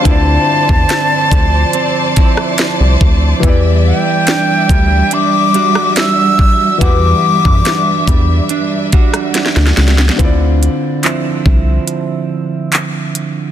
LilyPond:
<<
  \new Staff \with { instrumentName = "Flute" } { \time 4/4 \key d \dorian \tempo 4 = 71 a''2. r4 | r8 g''4. d'''4 e'''4 | d'''2 r2 | r1 | }
  \new Staff \with { instrumentName = "String section" } { \time 4/4 \key d \dorian << { <c'' a''>1 | <g e''>1~ | <g e''>1 | r1 | } \\ { d''1~ | d''1~ | d''1 | r1 | } >> }
  \new Staff \with { instrumentName = "Felt piano" } { \time 4/4 \key d \dorian <d c' e' f' d''>1 | <e b e' g' d''>1 | <e b fis' g' b'>1 | <d c' e' f' d''>1 | }
  \new Staff \with { instrumentName = "Clean electric guitar" } { \time 4/4 \key d \dorian <d f c' e'>4 c'8 f8 c'8 <f c' e'>4. | e4 d'8 g8 d'8 <g d' fis'>4. | <e fis'>4 d'8 g8 d'8 <g d' fis'>4. | d4 <f c' e'>2. | }
  \new Staff \with { instrumentName = "Analog synth bass" } { \clef bass \time 4/4 \key d \dorian d,8 r16 e,16 r8 d,8 r4 r16 c,16 d,8 | e,8. r8. d,8 r2 | e,8 r16 fis,16 r8 e,8 r4 r16 d,16 cis,8 | d,8. r8. c,8 r2 | }
  \new DrumStaff \with { instrumentName = "Drums" } \drummode { \time 4/4 <hh bd>8. bd16 <hh sn>8 <hh bd>8 hh8 <hh bd>16 ss16 <hh sn>8 bd8 | <hh bd>4 <hh sn>8 <hh bd>8 hh8 hh16 ss16 <hh sn>8 bd8 | <hh bd>8. bd16 <hh sn>8 <hh bd>8 hh8 <hh bd>16 <hh ss>16 <hh sn>32 sn32 sn32 sn32 sn32 sn32 sn32 sn32 | <hh bd>8 hh8 <hc hh>8 bd8 hh4 <hc hh>8 hh8 | }
>>